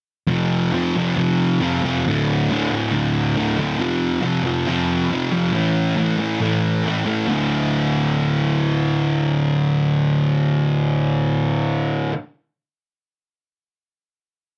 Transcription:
0.27 0.71 F2 medium
0.27 0.72 C3 medium
0.27 0.73 F3 loud
0.72 0.94 F2 medium
0.72 0.95 C3 medium
0.72 0.96 F3 medium
0.95 1.15 F2 medium
0.95 1.16 C3 medium
0.95 1.16 F3 medium
1.16 1.59 F2 medium
1.16 1.60 C3 medium
1.16 1.61 F3 loud
1.60 1.82 F2 medium
1.60 1.83 C3 medium
1.60 1.84 F3 medium
1.83 2.04 F2 medium
1.83 2.04 C3 medium
1.83 2.04 F3 medium
2.07 2.48 D2 medium
2.07 2.49 A2 loud
2.07 2.51 D3 loud
2.49 2.70 D2 medium
2.49 2.71 A2 loud
2.49 2.72 D3 medium
2.71 2.90 D2 medium
2.71 2.90 A2 medium
2.71 2.92 D3 medium
2.91 3.35 D2 medium
2.91 3.36 A2 loud
2.91 3.36 D3 loud
3.36 3.56 D2 medium
3.36 3.58 A2 medium
3.36 3.58 D3 medium
3.57 3.78 D2 medium
3.57 3.79 A2 medium
3.57 3.79 D3 medium
3.78 4.20 F2 medium
3.78 4.22 C3 medium
3.78 4.21 F3 loud
4.21 4.42 F2 medium
4.21 4.43 C3 medium
4.21 4.44 F3 medium
4.43 4.66 F2 medium
4.43 4.66 C3 medium
4.43 4.67 F3 loud
4.67 5.09 F2 medium
4.67 5.10 C3 medium
4.67 5.12 F3 loud
5.10 5.30 F2 medium
5.10 5.30 C3 loud
5.10 5.31 F3 loud
5.31 5.52 F2 medium
5.31 5.52 C3 medium
5.31 5.53 F3 medium
5.52 5.95 A2 loud
5.52 5.96 E3 loud
5.52 5.96 A3 loud
5.96 6.15 A2 medium
5.96 6.17 E3 loud
5.96 6.18 A3 loud
6.16 6.38 A2 medium
6.16 6.40 E3 medium
6.16 6.40 A3 medium
6.40 6.83 A2 loud
6.40 6.85 E3 medium
6.40 6.85 A3 medium
6.84 7.03 A2 medium
6.84 7.04 E3 medium
6.84 7.05 A3 loud
7.04 7.25 A2 medium
7.04 7.26 E3 medium
7.04 7.26 A3 medium
7.26 12.10 D2 loud
7.26 12.13 A2 loud
7.26 12.14 D3 loud

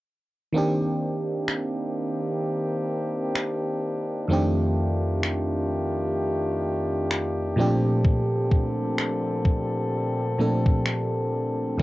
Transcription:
0.52 4.24 D#3 medium
0.52 4.26 D#3 medium
0.52 4.25 A#3 medium
0.52 4.26 A#3 medium
0.52 4.26 C4 medium
0.52 7.54 D4 medium
0.52 4.26 D4 medium
0.52 4.26 G4 medium
0.58 4.27 G4 medium
1.48 finger snap loud
3.35 finger snap loud
4.28 7.53 F2 medium
4.28 7.53 D#3 medium
4.28 7.54 D#3 medium
4.28 7.54 A3 medium
4.28 7.54 C4 medium
4.28 7.54 F4 medium
4.28 11.83 G4 medium
4.32 7.55 D4 medium
4.32 7.55 G4 medium
5.23 finger snap loud
7.11 finger snap loud
7.56 10.34 A#2 medium
7.56 11.83 A#2 medium
7.56 11.76 D3 medium
7.56 10.35 F3 medium
7.56 10.35 A3 medium
7.56 11.76 C4 medium
7.56 10.36 C4 medium
7.56 10.36 D4 medium
7.56 11.76 A4 medium
7.61 10.37 G4 medium
8.05 kick loud
8.51 kick medium
8.98 finger snap loud
9.45 kick medium
10.38 11.79 A#2 medium
10.38 11.80 F3 soft
10.38 11.80 A3 soft
10.38 11.79 C4 soft
10.38 11.80 D4 soft
10.38 11.81 A4 medium
10.66 kick medium
10.86 finger snap loud
11.78 11.83 F2 medium
11.78 11.83 D#3 medium
11.78 11.83 A#3 medium
11.78 kick loud

